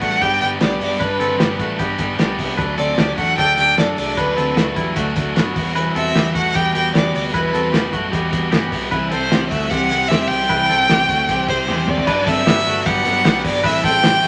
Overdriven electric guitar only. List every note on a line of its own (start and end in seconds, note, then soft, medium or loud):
0.02 0.21 G3 soft
0.02 0.22 B3 soft
0.02 0.22 D4 soft
0.21 0.41 D3 medium
0.21 0.41 G3 medium
0.21 0.42 B3 medium
0.21 0.40 D4 medium
0.41 0.60 G3 soft
0.41 0.61 B3 soft
0.41 0.61 D4 soft
0.60 0.80 G2 medium
0.60 0.81 D3 medium
0.60 0.81 G3 medium
0.60 0.79 B3 medium
0.60 0.78 D4 medium
0.79 0.99 G3 soft
0.79 1.00 B3 soft
0.79 1.00 D4 soft
1.00 1.20 G2 medium
1.00 1.20 D3 medium
1.00 1.20 G3 medium
1.00 1.19 B3 medium
1.00 1.17 D4 medium
1.19 1.38 G3 soft
1.19 1.39 B3 soft
1.19 1.39 D4 soft
1.39 1.59 G2 medium
1.39 1.59 D3 medium
1.39 1.60 G3 medium
1.39 1.60 B3 medium
1.39 1.58 D4 medium
1.59 1.79 G3 soft
1.59 1.79 B3 soft
1.59 1.80 D4 medium
1.78 1.99 D3 medium
1.78 2.00 G3 medium
1.78 1.99 B3 medium
1.78 1.98 D4 medium
2.00 2.18 G3 soft
2.00 2.19 B3 soft
2.00 2.19 D4 medium
2.19 2.39 G2 medium
2.19 2.39 D3 medium
2.19 2.39 G3 medium
2.19 2.38 B3 medium
2.19 2.37 D4 medium
2.38 2.59 G3 soft
2.38 2.59 B3 medium
2.38 2.59 D4 medium
2.60 2.79 D3 medium
2.60 2.79 F#3 medium
2.60 2.79 A3 medium
2.60 2.78 D4 medium
2.79 2.97 F#3 soft
2.79 2.98 A3 soft
2.79 2.99 D4 soft
2.98 3.18 D3 medium
2.98 3.18 F#3 medium
2.98 3.18 A3 medium
2.98 3.17 D4 medium
3.18 3.38 F#3 soft
3.18 3.38 A3 soft
3.18 3.38 D4 soft
3.37 3.58 D3 medium
3.37 3.58 F#3 medium
3.37 3.57 A3 medium
3.37 3.56 D4 medium
3.57 3.78 F#3 soft
3.57 3.78 A3 medium
3.57 3.77 D4 medium
3.79 3.98 D3 medium
3.79 3.98 F#3 medium
3.79 3.98 A3 medium
3.79 3.96 D4 medium
3.98 4.17 F#3 soft
3.98 4.18 A3 soft
3.98 4.17 D4 medium
4.17 4.37 D3 medium
4.17 4.38 F#3 medium
4.17 4.38 A3 medium
4.17 4.36 D4 medium
4.37 4.56 F#3 soft
4.37 4.56 A3 soft
4.37 4.57 D4 medium
4.57 4.77 D3 medium
4.57 4.77 F#3 medium
4.57 4.77 A3 medium
4.57 4.76 D4 medium
4.77 4.96 F#3 soft
4.77 4.97 A3 soft
4.77 4.97 D4 medium
4.96 5.16 D3 medium
4.96 5.17 F#3 medium
4.96 5.16 A3 medium
4.96 5.14 D4 medium
5.15 5.36 F#3 medium
5.15 5.36 A3 medium
5.15 5.36 D4 medium
5.37 5.56 D3 medium
5.37 5.56 F#3 medium
5.37 5.56 A3 medium
5.37 5.55 D4 medium
5.55 5.74 G3 soft
5.55 5.75 B3 soft
5.55 5.75 F#4 medium
5.75 5.95 E3 medium
5.75 5.95 G3 medium
5.75 5.95 B3 medium
5.75 5.94 F#4 medium
5.95 6.15 G3 soft
5.95 6.16 B3 soft
5.95 6.15 F#4 soft
6.16 6.35 E3 medium
6.16 6.36 G3 medium
6.16 6.35 B3 medium
6.16 6.34 F#4 medium
6.35 6.54 G3 soft
6.35 6.55 B3 soft
6.35 6.55 F#4 medium
6.54 6.74 E3 medium
6.54 6.75 G3 medium
6.54 6.75 B3 medium
6.54 6.73 F#4 medium
6.75 6.93 G3 soft
6.75 6.94 B3 soft
6.75 6.94 F#4 medium
6.94 7.14 E3 medium
6.94 7.14 G3 medium
6.94 7.14 B3 medium
6.94 7.13 F#4 medium
7.14 7.32 G3 soft
7.14 7.33 B3 soft
7.14 7.33 F#4 soft
7.33 7.53 E3 medium
7.33 7.52 G3 medium
7.33 7.51 B3 medium
7.33 7.50 F#4 medium
7.51 7.71 G3 soft
7.51 7.72 B3 soft
7.51 7.72 F#4 medium
7.71 7.92 E3 medium
7.71 7.93 G3 medium
7.71 7.92 B3 medium
7.71 7.90 F#4 medium
7.92 8.11 G3 soft
7.92 8.12 B3 medium
7.92 8.12 F#4 medium
8.10 8.31 E3 medium
8.10 8.32 G3 medium
8.10 8.31 B3 medium
8.10 8.29 F#4 medium
8.31 8.50 G3 soft
8.31 8.50 B3 medium
8.31 8.51 F#4 medium
8.50 8.71 E3 medium
8.50 8.72 G3 medium
8.50 8.71 B3 medium
8.50 8.69 F#4 medium
8.71 8.90 G3 soft
8.71 8.91 B3 medium
8.71 8.91 F#4 medium
8.90 9.11 C3 medium
8.90 9.11 E3 medium
8.90 9.11 G3 medium
8.90 9.11 C4 medium
8.90 9.10 E4 medium
9.11 9.31 G3 soft
9.11 9.32 C4 soft
9.11 9.31 E4 medium
9.31 9.51 C3 medium
9.31 9.51 E3 medium
9.31 9.52 G3 medium
9.31 9.51 C4 medium
9.31 9.49 E4 medium
9.50 9.70 G3 soft
9.50 9.71 C4 soft
9.50 9.71 E4 medium
9.71 9.91 E3 medium
9.71 9.91 G3 medium
9.71 9.90 C4 medium
9.71 9.88 E4 medium
9.90 10.10 G3 soft
9.90 10.10 C4 soft
9.90 10.10 E4 medium
10.10 10.30 C3 medium
10.10 10.30 E3 medium
10.10 10.30 G3 medium
10.10 10.30 C4 medium
10.10 10.29 E4 medium
10.30 10.49 G3 soft
10.30 10.49 C4 soft
10.30 10.50 E4 soft
10.49 10.69 C3 medium
10.49 10.70 E3 medium
10.49 10.69 G3 medium
10.49 10.68 C4 medium
10.49 10.67 E4 medium
10.68 10.88 G3 soft
10.68 10.88 C4 soft
10.68 10.89 E4 soft
10.88 11.09 C3 medium
10.88 11.09 E3 medium
10.88 11.09 G3 medium
10.88 11.08 C4 medium
10.88 11.07 E4 medium
11.08 11.27 G3 soft
11.08 11.29 C4 soft
11.08 11.28 E4 medium
11.28 11.48 E3 medium
11.28 11.48 G3 medium
11.28 11.48 C4 medium
11.28 11.47 E4 medium
11.48 11.67 G3 soft
11.48 11.67 C4 medium
11.48 11.68 E4 medium
11.66 11.87 C3 medium
11.66 11.87 E3 medium
11.66 11.88 G3 medium
11.66 11.87 C4 medium
11.66 11.86 E4 medium
11.87 12.07 G3 soft
11.87 12.07 C4 soft
11.87 12.07 E4 medium
12.07 12.27 G2 medium
12.07 12.27 D3 medium
12.07 12.27 F#3 medium
12.07 12.27 B3 medium
12.07 12.25 D4 medium
12.27 12.46 F#3 soft
12.27 12.46 B3 soft
12.27 12.46 D4 medium
12.45 12.66 D3 medium
12.45 12.66 F#3 medium
12.45 12.67 B3 medium
12.45 12.65 D4 medium
12.67 12.86 F#3 soft
12.67 12.86 B3 medium
12.67 12.86 D4 medium
12.85 13.05 G2 medium
12.85 13.05 D3 medium
12.85 13.06 F#3 medium
12.85 13.05 B3 medium
12.85 13.04 D4 medium
13.05 13.24 F#3 medium
13.05 13.25 B3 medium
13.05 13.25 D4 medium
13.24 13.44 D3 medium
13.24 13.45 F#3 medium
13.24 13.45 B3 medium
13.24 13.43 D4 medium
13.44 13.63 F#3 soft
13.44 13.64 B3 medium
13.44 13.64 D4 medium
13.63 13.83 A2 medium
13.63 13.84 E3 medium
13.63 13.84 G3 medium
13.63 13.84 C4 medium
13.63 13.82 E4 medium
13.83 14.03 G3 soft
13.83 14.04 C4 soft
13.83 14.03 E4 medium
14.03 14.23 E3 medium
14.03 14.24 G3 medium
14.03 14.23 C4 medium
14.03 14.21 E4 medium
14.22 14.28 C4 soft
14.22 14.28 E4 medium